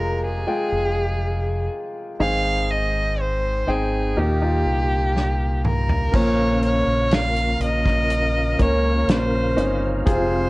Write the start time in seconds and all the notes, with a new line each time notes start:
Already playing: F1 C3 G#3 F4 G4 A#4
0.26 G#4
0.47 G#3 F4 G5
0.72 F1
2.20 G#1 G#2 D#3 C4 D#4 G#4 F5
2.71 D#5
3.20 C5
3.67 G#1 C4 D#4 G#4 G5
4.17 D#2 A#2 A#3 D#4 G4
4.41 A#3 D#4 F4
4.66 C2
5.16 snare
5.65 A#4, mid tom
5.89 floor tom
6.11 A#1 A#2 C#3 F3 A#3 C#4 F4 A#4, kick, crash
6.16 C#5
6.63 C#5, closed hi-hat
6.87 A#1
7.11 F5, snare, closed hi-hat
7.36 closed hi-hat
7.60 A#1 D#5, closed hi-hat
7.86 kick, snare
8.10 closed hi-hat
8.59 C#2 A#3 C#4 A#4 C#5, kick, closed hi-hat
9.08 A#1 C5, snare, closed hi-hat
9.56 G1 C4 C#4 D#4, closed hi-hat
10.05 F1 C3 F3 G#3 C4 F4 G#4 C5, kick, closed hi-hat